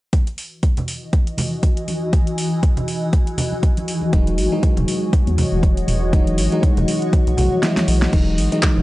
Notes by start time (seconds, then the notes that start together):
0.13 E3, kick, closed hi-hat
0.27 closed hi-hat
0.36 F#4 D#5, open hi-hat
0.63 kick, closed hi-hat
0.77 closed hi-hat, low conga
0.88 open hi-hat
0.97 G#5
1.13 kick, closed hi-hat
1.27 closed hi-hat
1.37 open hi-hat, high conga, low conga
1.63 kick, closed hi-hat
1.77 closed hi-hat
1.88 open hi-hat, high conga
2.13 kick, closed hi-hat
2.27 closed hi-hat
2.38 open hi-hat
2.63 kick, closed hi-hat
2.77 closed hi-hat, low conga
2.88 open hi-hat
3.13 kick, closed hi-hat
3.27 closed hi-hat
3.38 open hi-hat, low conga
3.53 high conga
3.63 kick, closed hi-hat
3.77 closed hi-hat, high conga
3.88 open hi-hat
4.02 high conga
4.13 E1 E3 F#3 G#3 D#4 F#4 D#5, kick, closed hi-hat
4.27 closed hi-hat
4.38 G#1, open hi-hat
4.52 E3 F#3 G#3 D#4
4.62 F#5, kick, closed hi-hat
4.73 C#5
4.77 E1, closed hi-hat, low conga
4.88 open hi-hat
5.13 kick, closed hi-hat
5.27 E2, closed hi-hat
5.38 open hi-hat, high conga, low conga
5.52 E1
5.63 kick, closed hi-hat
5.77 closed hi-hat
5.88 E1, open hi-hat, high conga
6.13 E3 F#3 G#3 D#4, kick, closed hi-hat
6.27 closed hi-hat
6.38 G#1, open hi-hat
6.52 E3 F#3 G#3 D#4, closed hi-hat
6.63 kick, closed hi-hat
6.77 E1, closed hi-hat, low conga
6.88 open hi-hat
7.02 closed hi-hat
7.13 kick, closed hi-hat
7.27 B1, closed hi-hat
7.37 B1 E3 F#3 G#3 F#4, open hi-hat, low conga
7.52 high conga
7.63 E3 F#3 G#3 E4, snare, closed hi-hat
7.77 snare, closed hi-hat, high conga
7.88 B1, open hi-hat
8.02 snare, closed hi-hat, high conga
8.12 E1 E3 F#3 G#3 D#4 F#4 D#5, kick, closed hi-hat, crash, high conga
8.28 D#5
8.38 G#1, open hi-hat
8.52 E3 F#3 G#3 D#4, closed hi-hat
8.63 kick, clap, closed hi-hat
8.77 E1, high conga